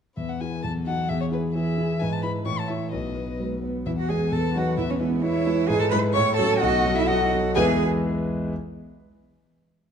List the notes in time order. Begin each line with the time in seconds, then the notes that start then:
0.17 E2 E3 B4 E5
0.29 F#5
0.41 E4 G#4 G#5
0.62 E2 F#3 A4 A5
0.86 D#4 F#4 F#5
1.08 E2 E3 G#4 E5
1.21 C#5
1.31 E4 G#4 B4
1.54 E3 B3 E4 G#4 E5
1.78 E4 G#4
2.00 G#2 E3 B4 G#5
2.12 A5
2.23 E4 B4 B5
2.45 A2 E3 C#5 C#6
2.59 A5
2.68 E4 C#5 E5
2.91 B1 F#3 B4 D#5
3.16 B3 B4
3.39 F#3 G#3 B3 B4
3.52 A3
3.63 B3 B4
3.86 E2 E4 E5
3.97 F#4 F#5
4.09 G#3 B3 G#4 B4 G#5
4.32 E2 A4 B4 A5
4.56 F#3 D#4 F#4 B4 F#5
4.78 E2 E4 E5
4.90 C#4 C#5
5.00 G#3 B3 E4 B4
5.22 G#3 E4 B4 C#5 E5
5.46 G#3 E4 B4
5.68 G#2 G#4 B4 G#5
5.79 A4 A5
5.90 G#3 E4 B4 B5
6.13 A2 C#5 C#6
6.36 F#3 C#4 A4 A5
6.60 B1 F#4 D#5 F#5
6.85 F#3 D#4 A4
6.95 E4 E5
7.07 F#3 D#4 F#4 A4 D#5 F#5
7.33 F#3 D#4 A4
7.55 E2 E3 G#3 E4 G#4 B4 E5 G#5